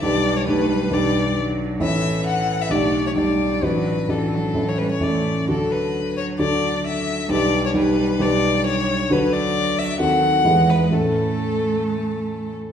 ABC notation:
X:1
M:4/4
L:1/16
Q:1/4=132
K:Glyd
V:1 name="Violin"
d3 c B4 d4 z4 | e4 f3 e d3 c d4 | B4 A4- A c B c d4 | A2 B4 c2 d4 e4 |
d3 c B4 d4 c4 | [K:A] B2 d4 e2 f6 B2 | A12- A2 z2 |]
V:2 name="Grand piano"
[B,,,DGB]4 [B,,,DGB]4 [B,,,DGB]8 | [A,,,A,Ec]8 [B,,,DGd]4 [B,,,DGd]4 | [A,,,DFd]4 [A,,,DFd]4 [A,,,CEA]4 [A,,,CEA]4 | [D,,DFA]8 [D,,DFA]8 |
[B,,,DGB]4 [B,,,DGB]4 [B,,,DGB]8 | [K:A] [D,,DFB]8 [^D,,^B,FA]4 [E,,=B,EG]4 | [A,,CEA]16 |]
V:3 name="Cello" clef=bass
G,4 A,2 G,6 F,4 | E,8 A,4 G,4 | F,4 E,2 F,4 G,2 A,4 | F,16 |
G,16 | [K:A] F,8 F,4 G,4 | A,12- A,2 z2 |]